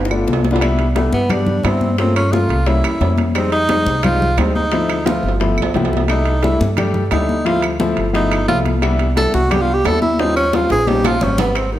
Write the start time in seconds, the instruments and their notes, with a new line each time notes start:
Already playing: upright bass G1
0.05 low bongo
0.10 grand piano A3 B3 D4 F4, high conga, claves
0.27 upright bass C2, low bongo, high conga
0.33 low timbale
0.44 high conga, low timbale
0.51 grand piano A3 B3 D4 F4, low bongo
0.56 low timbale
0.61 grand piano G3 B3 D4 E4, high bongo, high conga, high timbale, claves
0.79 high bongo, high conga, high timbale
0.96 grand piano G3 B3 D4 E4, tenor saxophone A3, high bongo, high conga, high timbale, low timbale
1.12 upright bass G2, tenor saxophone B3, high bongo, high conga
1.30 grand piano G3 B3 D4 G4, tenor saxophone D4, high bongo, high conga, low conga, high timbale, claves
1.47 high bongo, high conga, low conga
1.63 upright bass G2, grand piano G3 B3 D4 E4, tenor saxophone C4, high bongo, low bongo, high conga, high timbale, low timbale, claves
1.81 high conga
1.98 grand piano A3 A#3 C#4 F4, tenor saxophone C4, high bongo, high conga, high timbale
2.16 tenor saxophone C#4, high bongo, high conga, high timbale, claves
2.32 grand piano A3 A#3 C#4 F4, tenor saxophone F4, high bongo, high conga, low timbale
2.49 upright bass C2, high bongo, high conga, high timbale
2.66 grand piano G3 A#3 C#4 E4, tenor saxophone E4, high bongo, high conga, high timbale
2.84 upright bass E2, high bongo, high conga, high timbale, claves
3.01 upright bass F2, grand piano G3 A#3 C#4 E4, high bongo, low bongo, high conga, low timbale
3.18 high conga, high timbale
3.35 grand piano G3 G#3 C4 D#4, tenor saxophone C4, high bongo, high conga, high timbale, claves
3.52 tenor saxophone D#4, high bongo, high conga, high timbale
3.69 grand piano G3 G#3 C4 D#4, high bongo, high conga, high timbale, low timbale
3.85 upright bass C2, high bongo, high conga
4.03 grand piano G3 G#3 C4 D#4, tenor saxophone F4, high bongo, high conga, low conga, high timbale, claves
4.20 high bongo, high conga, low conga
4.37 upright bass D2, grand piano G3 G#3 C4 D#4, tenor saxophone C4, high bongo, low bongo, high conga, high timbale, low timbale, claves
4.55 tenor saxophone D#4, high conga
4.72 grand piano F3 A3 C4 E4, high bongo, high conga, high timbale
4.89 high bongo, high conga, high timbale, claves
5.06 grand piano F3 A3 C4 E4, tenor saxophone F4, high bongo, high conga, high timbale
5.23 upright bass G1, high bongo, high conga
5.28 low timbale
5.40 grand piano F3 A3 B3 E4, high bongo, high conga, low timbale
5.57 upright bass B1, high bongo, high conga, claves
5.62 low timbale
5.74 upright bass C2, grand piano F3 A3 B3 E4 G5, high bongo, low bongo, high conga, low timbale
5.85 low timbale
5.93 grand piano E5, high conga
5.97 low timbale
6.08 grand piano G3 A3 D4 E4, tenor saxophone D#4, high bongo, high conga, high timbale, claves
6.25 high bongo, high conga, high timbale
6.43 grand piano G3 A3 D4 E4, tenor saxophone E4, high bongo, high conga, high timbale, low timbale
6.60 upright bass G2, high bongo, high conga
6.77 grand piano G3 A3 D4 G4, high bongo, high conga, low conga, high timbale, claves
6.94 high bongo, high conga, low conga
7.11 upright bass D2, grand piano G3 A3 D4 E4, tenor saxophone D#4, high bongo, low bongo, high conga, high timbale, low timbale, claves
7.29 high conga
7.45 grand piano F3 A3 C4 E4, tenor saxophone F4, high bongo, high conga, high timbale
7.62 high bongo, high conga, high timbale, claves
7.80 grand piano F3 A3 C4 E4, high bongo, high conga, low timbale
7.97 upright bass G1, high bongo, high conga, high timbale
8.13 grand piano F3 A3 B3 E4, tenor saxophone D#4, high bongo, high conga, high timbale
8.31 high bongo, high conga, high timbale, claves
8.48 upright bass C2, grand piano F3 A3 B3 E4, tenor saxophone F4, high bongo, low bongo, high conga, low timbale
8.65 high conga, high timbale
8.82 grand piano G3 B3 D4 E4, high bongo, high conga, high timbale, claves
8.99 high bongo, high conga, high timbale
9.16 grand piano G3 B3 D4 E4, tenor saxophone A4, high bongo, high conga, high timbale, low timbale
9.34 upright bass C2, tenor saxophone F#4, high conga
9.50 grand piano G3 B3 D4 G4, tenor saxophone G4, high bongo, high conga, low conga, high timbale, claves
9.61 tenor saxophone F4
9.68 high bongo, high conga
9.74 tenor saxophone G4
9.85 upright bass D#2, grand piano G3 B3 D4 E4, tenor saxophone A4, high bongo, low bongo, high conga, high timbale, low timbale, claves
10.02 tenor saxophone E4, high conga
10.19 grand piano G3 C4 C#4 F4, tenor saxophone D#4, high bongo, high conga, high timbale
10.36 tenor saxophone C#4, high bongo, high conga, claves
10.53 grand piano G3 C4 C#4 F4, tenor saxophone F4, high bongo, high conga, low timbale
10.70 upright bass A#1, tenor saxophone G#4, high bongo, high conga, high timbale
10.87 grand piano G3 C4 C#4 D#4, tenor saxophone G4, high bongo, high conga, low timbale
11.04 tenor saxophone F4, high bongo, high conga, low timbale, claves
11.21 upright bass G#1, grand piano G3 C4 C#4 G4, tenor saxophone C#4, low conga, low timbale
11.38 tenor saxophone B3, low bongo, low conga, low timbale
11.55 tenor saxophone C4, high bongo, high conga, high timbale, claves
11.72 tenor saxophone D#3, high bongo, high conga